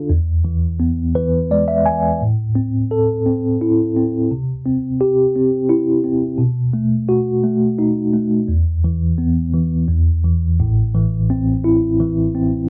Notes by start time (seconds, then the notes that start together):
Already playing: D4 F4 A4
0.09 E2
0.44 E3
0.80 B3
1.15 E3 B4
1.51 G#3 D5
1.68 E5
1.85 E3 G#5
2.21 A2
2.55 C4
2.91 A4
3.26 C4
3.62 E4
3.97 C4
4.32 C3
4.66 C4
5.01 G4
5.36 C4
5.69 E4
6.04 C4
6.38 B2
6.73 A3
7.09 F#4
7.43 A3
7.79 D#4
8.14 A3
8.48 E2
8.84 E3
9.18 B3
9.54 E3
9.88 E2
10.24 E3
10.60 A1 A2
10.95 E3
11.30 C4
11.64 E4
12.00 E3
12.35 C4